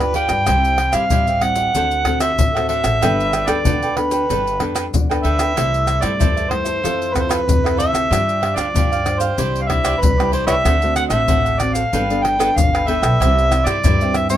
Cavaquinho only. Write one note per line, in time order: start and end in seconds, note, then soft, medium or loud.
0.00 0.13 G4 soft
0.00 0.14 B4 soft
0.00 0.14 D5 soft
0.14 0.30 F4 medium
0.14 0.30 G4 medium
0.14 0.29 B4 medium
0.14 0.29 D5 medium
0.30 0.46 G4 soft
0.30 0.46 B4 soft
0.30 0.45 D5 medium
0.48 0.77 E4 medium
0.48 0.78 G4 medium
0.48 0.78 C5 medium
0.48 0.79 E5 medium
0.78 0.92 E4 soft
0.78 0.92 G4 soft
0.78 0.93 C5 medium
0.78 0.93 E5 soft
0.93 1.03 E4 medium
0.93 1.04 G4 medium
0.93 1.04 C5 medium
0.93 1.04 E5 medium
1.11 1.26 E4 medium
1.11 1.26 G4 medium
1.11 1.26 C5 medium
1.11 1.26 E5 medium
1.27 1.58 G4 soft
1.27 1.57 C5 soft
1.27 1.55 E5 medium
1.57 1.74 G4 soft
1.57 1.73 C5 soft
1.57 1.73 E5 soft
1.75 2.04 D4 medium
1.75 2.05 A4 medium
1.75 2.06 C5 medium
1.75 2.06 F#5 medium
2.06 2.19 D4 soft
2.06 2.19 A4 soft
2.06 2.20 C5 soft
2.06 2.20 F#5 medium
2.20 2.31 D4 medium
2.20 2.31 A4 medium
2.20 2.31 C5 medium
2.20 2.31 F#5 medium
2.55 2.68 A4 soft
2.55 2.69 C5 soft
2.55 2.69 F#5 soft
2.69 2.84 D4 medium
2.69 2.84 A4 medium
2.69 2.83 C5 medium
2.69 2.82 F#5 medium
2.83 3.00 A4 soft
2.83 3.00 C5 soft
2.83 3.00 F#5 soft
3.01 3.31 D4 medium
3.01 3.31 A4 medium
3.01 3.31 B4 medium
3.01 3.32 G5 medium
3.32 3.46 D4 soft
3.32 3.46 A4 soft
3.32 3.47 B4 medium
3.32 3.47 G5 medium
3.47 3.58 D4 medium
3.47 3.58 A4 medium
3.47 3.58 B4 medium
3.47 3.58 G5 medium
3.65 3.80 D4 medium
3.65 3.81 A4 medium
3.65 3.81 B4 medium
3.65 3.81 G5 medium
3.83 4.12 A4 soft
3.83 4.11 B4 soft
3.83 4.10 G5 soft
4.11 4.28 A4 soft
4.11 4.27 B4 soft
4.11 4.27 G5 soft
4.29 4.58 D4 medium
4.29 4.59 A4 medium
4.29 4.60 B4 medium
4.29 4.60 G5 medium
4.59 4.73 D4 soft
4.59 4.73 A4 medium
4.59 4.74 B4 soft
4.59 4.74 G5 medium
4.75 4.85 D4 medium
4.75 4.85 A4 medium
4.75 4.85 B4 medium
4.75 4.85 G5 medium
5.10 5.23 A4 soft
5.10 5.23 B4 soft
5.10 5.24 G5 soft
5.23 5.39 D4 medium
5.23 5.39 A4 medium
5.23 5.38 B4 medium
5.23 5.37 G5 medium
5.38 5.55 A4 soft
5.38 5.55 B4 soft
5.38 5.54 G5 soft
5.56 5.86 E4 medium
5.56 5.86 A4 medium
5.56 5.87 C5 medium
5.56 5.88 E5 medium
5.87 6.00 E4 soft
5.87 6.00 A4 soft
5.87 6.01 C5 medium
5.87 6.01 E5 medium
6.01 6.12 E4 medium
6.01 6.12 A4 medium
6.01 6.12 C5 medium
6.01 6.12 E5 medium
6.19 6.35 E4 medium
6.19 6.35 A4 medium
6.19 6.35 C5 medium
6.19 6.35 E5 medium
6.37 6.64 A4 soft
6.37 6.64 C5 soft
6.37 6.63 E5 soft
6.64 6.82 A4 soft
6.64 6.81 C5 soft
6.64 6.81 E5 soft
6.83 7.13 F4 medium
6.83 7.14 A4 medium
6.83 7.14 C5 medium
6.83 7.15 E5 medium
7.15 7.28 F4 soft
7.15 7.28 A4 medium
7.15 7.28 C5 medium
7.15 7.28 E5 medium
7.29 7.39 F4 medium
7.29 7.39 A4 medium
7.29 7.40 C5 medium
7.29 7.40 E5 medium
7.64 7.77 A4 soft
7.64 7.77 C5 soft
7.64 7.77 E5 soft
7.77 7.93 F4 medium
7.77 7.93 A4 medium
7.77 7.92 C5 medium
7.77 7.91 E5 medium
7.92 8.09 A4 soft
7.92 8.09 C5 soft
7.92 8.08 E5 soft
8.11 8.40 D4 medium
8.11 8.41 G4 medium
8.11 8.41 C5 medium
8.41 8.55 D4 soft
8.41 8.55 G4 medium
8.41 8.55 C5 soft
8.41 8.56 F5 medium
8.56 8.67 D4 medium
8.56 8.67 G4 medium
8.56 8.67 C5 medium
8.56 8.67 F5 medium
8.76 8.90 D4 medium
8.76 8.90 G4 medium
8.76 8.90 C5 medium
8.76 8.90 F5 medium
8.92 9.21 G4 soft
8.92 9.20 C5 soft
8.92 9.19 F5 soft
9.20 9.37 G4 soft
9.20 9.37 C5 soft
9.20 9.36 F5 medium
9.38 9.68 E4 medium
9.38 9.68 G4 medium
9.38 9.69 C5 medium
9.38 9.69 D5 medium
9.69 9.83 E4 soft
9.69 9.84 G4 soft
9.69 9.84 C5 soft
9.69 9.84 D5 medium
9.84 9.94 E4 medium
9.84 9.95 G4 medium
9.84 9.95 C5 medium
9.84 9.95 D5 medium
10.18 10.31 G4 soft
10.18 10.32 C5 soft
10.18 10.32 D5 soft
10.32 10.48 E4 medium
10.32 10.47 G4 medium
10.32 10.46 C5 medium
10.32 10.46 D5 medium
10.47 10.64 G4 soft
10.47 10.64 C5 soft
10.47 10.63 D5 soft
10.65 10.94 D4 medium
10.65 10.95 A4 medium
10.65 10.96 C5 medium
10.65 10.96 F#5 medium
10.96 11.09 D4 soft
10.96 11.09 A4 medium
10.96 11.09 C5 medium
10.96 11.10 F#5 medium
11.10 11.21 D4 medium
11.10 11.21 A4 medium
11.10 11.21 C5 medium
11.10 11.21 F#5 medium
11.28 11.44 D4 medium
11.28 11.44 A4 medium
11.28 11.44 C5 medium
11.28 11.44 F#5 medium
11.45 11.75 A4 soft
11.45 11.74 C5 soft
11.45 11.73 F#5 soft
11.74 11.91 A4 soft
11.74 11.91 C5 soft
11.74 11.90 F#5 soft
11.93 12.22 D4 medium
11.93 12.23 A4 medium
11.93 12.23 B4 medium
11.93 12.24 G5 medium
12.23 12.38 D4 soft
12.23 12.38 A4 soft
12.23 12.38 B4 medium
12.23 12.39 G5 medium
12.39 12.49 D4 medium
12.39 12.49 A4 medium
12.39 12.49 B4 medium
12.39 12.50 G5 medium
12.73 12.86 A4 soft
12.73 12.87 B4 soft
12.73 12.87 G5 medium
12.87 13.03 D4 medium
12.87 13.02 A4 medium
12.87 13.02 B4 medium
12.87 13.01 G5 medium
13.02 13.19 A4 soft
13.02 13.19 B4 soft
13.02 13.18 G5 medium
13.20 13.50 E4 medium
13.20 13.51 G4 medium
13.20 13.52 C5 medium
13.20 13.52 E5 medium
13.52 13.65 E4 medium
13.52 13.65 G4 medium
13.52 13.66 C5 medium
13.52 13.66 E5 medium
13.66 13.77 E4 medium
13.66 13.77 G4 medium
13.66 13.77 C5 medium
13.66 13.77 E5 medium
13.84 13.99 E4 medium
13.84 13.99 G4 medium
13.84 13.99 C5 medium
13.84 14.00 E5 medium
14.02 14.30 G4 soft
14.02 14.30 C5 soft
14.02 14.29 E5 soft
14.30 14.37 G4 soft
14.30 14.37 C5 soft
14.30 14.37 E5 soft